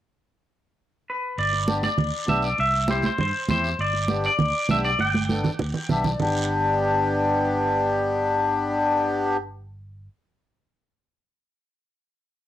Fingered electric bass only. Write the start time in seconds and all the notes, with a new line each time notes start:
1.38 G1
1.98 D2
2.28 B1
2.59 C2
3.19 G2
3.49 E2
3.79 G1
4.39 D2
4.70 B1
4.99 G1
5.60 D2
5.90 B1
6.21 G1